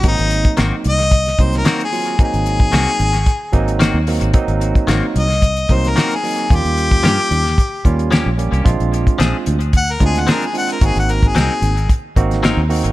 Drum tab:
HH |xxxxx-xxxxxxxxox|xxxxx-xxx-xxx-ox|xxxxx-xxxxxxxxox|xxxxx-xxx-xxx-xx|
SD |----o--o-o-oo---|----o--o----o---|----o--o---oo---|----o--o----o---|
BD |o--o----o-o-----|o--o----o-o-----|o--o----o-o-----|o--o----o-o-----|

HH |xxxxx-xxxxxxxxox|xxxxx-xxx-xxx-ox|
SD |----o------oo---|-o--o------oo---|
BD |o--o----o-o-----|o--o----o-o-----|